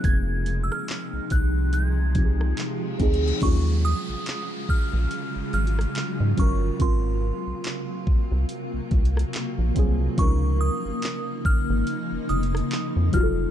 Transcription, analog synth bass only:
X:1
M:4/4
L:1/16
Q:"Swing 16ths" 1/4=71
K:Ebdor
V:1 name="Analog synth bass" clef=bass
F,,,4 z C,, C,,6 z2 =D,,2 | E,,3 B,,, z2 B,,, B,,, z A,,, A,,,2 z A,, =G,,,2 | A,,,3 C,, z2 C,, C,, z C,, C,,2 z B,,, C,,2 | D,,3 A,,, z2 A,,, A,,, z F,,, F,,,2 z F,, F,,,2 |]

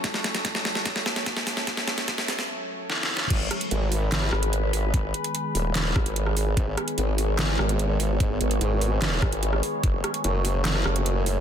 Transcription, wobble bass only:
X:1
M:4/4
L:1/8
Q:1/4=147
K:G#phr
V:1 name="Wobble bass" clef=bass
z8 | z8 | G,,, z G,,,3 G,,,3 | G,,, z2 D,,,2 G,,,3 |
G,,, z G,,,3 G,,,3 | G,,, G,,, G,,,3 G,,,2 z | F,,, z F,,,3 F,,,3 |]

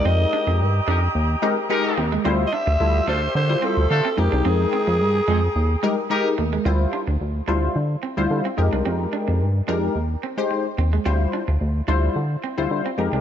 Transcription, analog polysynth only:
X:1
M:4/4
L:1/16
Q:1/4=109
K:F
V:1 name="Analog polysynth"
[_A,_EGB]4 z6 [A,EGB] z [A,EGB]2 z2 | [G,EFc]2 z2 [G,EFA]2 z3 [G,EFc]3 z2 [_A,_EBg]2- | [_A,_EBg]4 z6 [A,EGB] z [A,EGB]2 z2 | [G,EFc]3 z3 [G,EFc]2 z3 [G,EFc]2 z [_A,_EGB]2- |
[_A,_EGB]4 z2 [A,EGB]2 z3 [A,EGc]2 z3 | [G,EFc]3 z3 [G,EFc]2 z3 [G,EFc]2 z [_A,_EGB]2 |]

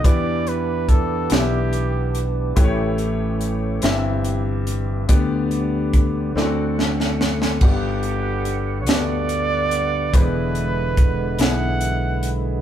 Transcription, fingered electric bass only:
X:1
M:6/8
L:1/8
Q:3/8=48
K:G
V:1 name="Fingered electric bass" clef=bass
E,,3 B,,,3 | A,,,3 G,,,3 | D,,3 D,,3 | G,,,3 D,,3 |
E,,,3 B,,,3 |]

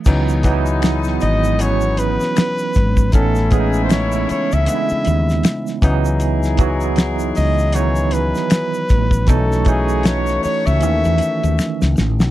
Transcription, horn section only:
X:1
M:4/4
L:1/8
Q:"Swing 16ths" 1/4=78
K:C#m
V:1 name="Horn section"
[B,,G,D]6- [B,,G,D] z | [C,A,E]6 z [E,DG]- | [E,DG]6- [E,DG] z | [A,Fc]6- [A,Fc] z |]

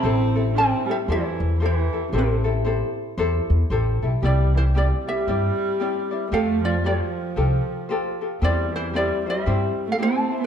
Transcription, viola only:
X:1
M:4/4
L:1/16
Q:"Swing" 1/4=114
K:Am
V:1 name="Viola" clef=bass
C4 C2 G,2 E,4 E,4 | C,4 z12 | [K:C] G,2 E,2 G,2 G,8- G,2 | A,2 F,2 F,8- F,2 z2 |
G,2 E,2 G,2 G,4- G, A, C3 B, |]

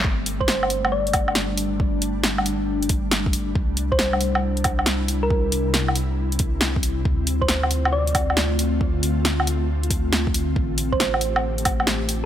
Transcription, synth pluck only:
X:1
M:4/4
L:1/16
Q:"Swing 16ths" 1/4=137
K:Cmix
V:1 name="Synth pluck"
z3 c2 z3 d3 z4 z | z16 | z3 c2 z8 z2 B- | B3 z12 z |
z3 c2 z3 d3 z4 z | z16 | z3 c2 z8 z3 |]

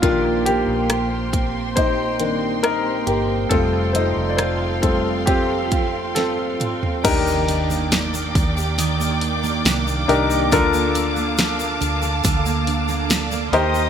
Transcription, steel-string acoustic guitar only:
X:1
M:4/4
L:1/16
Q:1/4=69
K:Bb
V:1 name="Steel-string acoustic guitar"
[B,,G]2 B,2 G2 C2 G2 C2 G2 C2 | [F,,F]2 A,2 F2 C2 F2 C2 F2 C2 | E, B, D B, D B, D G E, B, D B, D B, D G | D, B, D B, D B, D A D, B, D B, D B, E, G |]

